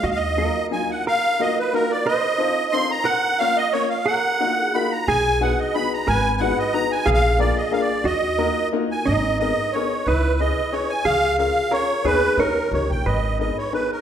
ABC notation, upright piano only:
X:1
M:3/4
L:1/8
Q:"Swing" 1/4=180
K:Ebm
V:1 name="Upright piano"
z2 [G,B,EF] z [G,B,EF] z | z2 [B,EFGB] z [B,EFGB] z | z2 [=CEF=A=c] z [CEFAc] z | z2 [B,DFBd] z [B,DFBd] z |
z2 [B,EFGB] z [B,EFGB] z | z2 [=B,^D^F^G=B] z [B,DFGB] z | z2 [CEGAc] z [CEGAc] z | z2 [B,=DFAB] z [B,DFAB] z |
z2 [B,EFGB] z [B,EFGB] z | [K:G#m] z2 [B,DGA] z [B,DGA] z | z2 [CEGB] z [CEGB] z | z2 [C^EGA] z [CEGA] z |
[B,DGB]2 [CD=GA] z [CDGA] z | z2 [B,DGA] z [B,DGA] z |]